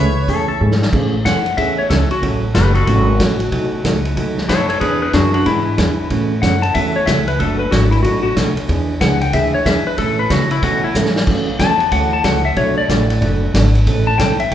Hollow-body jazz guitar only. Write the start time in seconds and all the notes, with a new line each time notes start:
0.28 C#3 E3 A3 C#4 G#4
0.60 C#3 E3 A3 C#4 G#4
0.92 C#3 E3 A3 C#4 G#4
1.24 C#3 E3 A3 C#4 G#4
1.57 C#3 E3 A3 C#4 G#4
1.90 C#3 E3 A3 C#4 G#4
2.22 C#3 F#3 A3 C#4 F#4
2.54 C#3 F#3 A3 C#4 F#4
2.87 C#3 F#3 A3 C#4 F#4
3.19 C#3 F#3 A3 C#4 F#4
3.52 B2 F#3 A3 D#4 F#4
3.84 B2 F#3 A3 D#4 F#4
4.16 B2 F#3 A3 D#4 F#4
4.48 B2 F#3 A3 D#4 F#4
4.81 E3 B3 D4 G#4
5.13 E3 B3 D4 G#4
5.46 E3 B3 D4 G#4
5.78 E3 B3 D4 G#4
6.10 C#3 E3 A3 C#4 F#4
6.42 C#3 E3 A3 C#4 F#4
6.75 C#3 E3 A3 C#4 F#4
7.08 C#3 E3 A3 C#4 F#4
7.39 B2 F#3 A3 D4 F#4
7.71 B2 F#3 A3 D4 F#4
8.04 B2 F#3 A3 D4 F#4
8.36 B2 F#3 A3 D4 F#4
8.68 E3 B3 D4 G#4
9.00 E3 B3 D4 G#4
9.33 E3 B3 D4 G#4
9.65 E3 B3 D4 G#4
9.97 B2 E3 A3 C#4 A4
10.30 B2 E3 A3 C#4 A4
10.62 B2 E3 A3 C#4 A4
10.95 B2 E3 A3 C#4 A4
11.27 C#3 E3 A3 C#4 F#4
11.59 C#3 E3 A3 C#4 F#4
11.92 C#3 E3 A3 C#4 F#4
12.24 C#3 E3 A3 C#4 F#4
12.56 B2 F#3 A3 D4 F#4
12.89 B2 F#3 A3 D4 F#4
13.22 B2 F#3 A3 D4 F#4
13.54 B2 F#3 A3 D4 F#4
13.87 B2 E3 A3 C#4 A4
14.19 B2 E3 A3 C#4 A4
14.51 B2